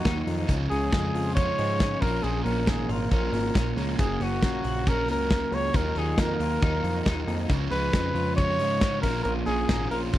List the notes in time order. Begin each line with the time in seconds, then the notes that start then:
Already playing: D#3 A#3 F#4
0.04 D#2 D#3 F#3 A#3 D#4 F4, kick, snare, closed hi-hat
0.27 F2 A#3, open hi-hat
0.47 C#2 C#3 F3 G#3 C#4, kick, closed hi-hat
0.69 C#2 F3 G#3 C#4 G#4, open hi-hat
0.92 F2 C#3 F3 G#3 C#4, kick, snare, closed hi-hat
1.14 F2 F4, open hi-hat
1.35 C#3 F3 G#3 C#4 C#5, kick, closed hi-hat
1.58 G#2 G#3, open hi-hat
1.79 C#3 F3 G#3 C#4, kick, snare, closed hi-hat
2.01 A#1 A#2 F3 A#3 C#4 A#4, kick, open hi-hat
2.23 A#1 A#2 F3 A#3 C#4 G#4, closed hi-hat
2.45 A#1 C#4 A#4, open hi-hat
2.67 G#1 A#2 F3 A#3 C#4 G#4, kick, snare, closed hi-hat
2.88 G#1 F4 A#4, open hi-hat
3.11 A#1 A#2 F3 A#3 C#4 A#4, kick, closed hi-hat
3.32 G#1 A#3, open hi-hat
3.54 A#1 A#2 F3 A#3 C#4, kick, snare, closed hi-hat
3.76 C#2 F3 A#3 C#4, open hi-hat
3.99 F#1 F#2 C#3 F#3 A#3 C#4 G#4, kick, closed hi-hat
4.20 F#1 C#4 F#4, open hi-hat
4.42 A#1 C#3 F#3 A#3 C#4, kick, snare, closed hi-hat
4.64 A#1 F#4, open hi-hat
4.86 F#2 C#3 F#3 A#3 C#4 A#4, kick, closed hi-hat
5.08 C#2 A#3 A#4, open hi-hat
5.30 C#3 F#3 A#3 C#4, kick, snare, closed hi-hat
5.52 C#2 A#3 C#5, open hi-hat
5.74 D#2 D#3 F#3 A#3 F4 A#4, kick, closed hi-hat
5.95 D#2 F#3 A#3 D#4 F4 G#4, open hi-hat
6.18 F2 D#3 F#3 A#3 F4 A#4, kick, snare, closed hi-hat
6.40 D#2 F4, open hi-hat
6.62 D#2 D#3 F#3 A#3 D#4 F4, kick, closed hi-hat
6.83 F2 A#3, open hi-hat
7.05 D#2 D#3 F#3 A#3 D#4 F4, kick, snare, closed hi-hat
7.27 F2 A#3, open hi-hat
7.49 C#2 C#3 F3 G#3 C#4, kick, closed hi-hat
7.71 C#2 F3 G#3 C#4 B4, open hi-hat
7.93 F2 C#3 F3 G#3 C#4, kick, snare, closed hi-hat
8.14 F2 F4, open hi-hat
8.36 C#3 F3 G#3 C#4 C#5, kick, closed hi-hat
8.59 G#2 G#3, open hi-hat
8.81 C#3 F3 G#3 C#4, kick, snare, closed hi-hat
9.02 A#1 A#2 F3 A#3 C#4 A#4, kick, open hi-hat
9.23 A#1 A#2 A#4, closed hi-hat
9.46 A#1 F3 A#3 C#4 G#4, open hi-hat
9.69 G#1 A#2 F3 A#3 C#4, kick, snare, closed hi-hat
9.91 A#1 F4 A#4, open hi-hat
10.13 C#2 C#3 F3 G#3 D#4 F4, kick, closed hi-hat